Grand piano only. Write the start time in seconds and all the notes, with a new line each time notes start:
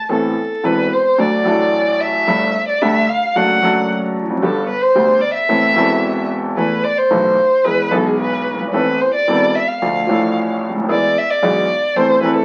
0.09 A1 A2 E3 B3 C4 A4
0.63 E1 E2 E3 B3 C4 A4
1.18 D2 D3 F#3 A3 D4 A4
1.43 A1 A2 F#3 A3 D4
1.48 A4
2.27 G1 G2 G3 A3 D4 A4
2.81 D2 D3 G3 A3 D4 A4
3.35 F#2 F#3 A3 D4 A4
3.61 F#2 F#3 A3 D4 A4
4.22 E2
4.29 F2
4.36 F#2
4.42 G1 G2 D3 G3 B3 G4
4.95 D2 D3 G3 B3 G4
5.49 A1 A2 E3 B3 C4 A4
5.74 E1 E2 E3 B3 C4 A4
6.57 E2 E3 A3 B3 A4
7.10 B1 B2 E3 A3 B3 A4
7.64 E2 E3 G#3 B3 G#4
7.90 B1 B2 E3 G#3 B3 G#4
8.53 F#1
8.60 G1
8.68 G#1
8.73 A1 A2 E3 B3 C4 A4
9.28 E1 E2 E3 B3 C4 A4
9.82 D2 D3 F3 A3 D4 A4
10.07 A1 A2 F3 A3 D4 A4
10.69 C#2
10.76 D2
10.83 D#2
10.89 E2 E3 G#3 B3 G#4
11.42 B1 B2 E3 G#3 B3 G#4
11.96 E2 E3 A3 C4 A4
12.21 E2 E3 A3 C4
12.25 A4